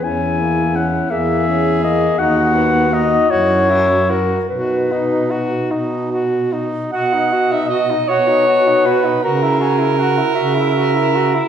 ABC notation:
X:1
M:6/8
L:1/16
Q:3/8=52
K:B
V:1 name="Clarinet"
g4 f2 e4 d2 | f4 d2 c4 A2 | B6 z6 | d6 f6 |
a2 g2 f2 e6 |]
V:2 name="Alto saxophone"
E6 G6 | F6 E4 z2 | D8- D z3 | f3 e d2 c4 B2 |
A12 |]
V:3 name="Tenor saxophone"
C2 A,2 C2 A,2 C2 A,2 | D2 B,2 D2 F2 E2 F2 | F2 D2 F2 D2 F2 D2 | F D F D F D F D F D F D |
F E F E F E F E F E F E |]
V:4 name="Baritone saxophone" clef=bass
E,,6 E,,6 | D,,6 F,,6 | B,,6 B,,6 | B,,6 B,,6 |
C,6 C,6 |]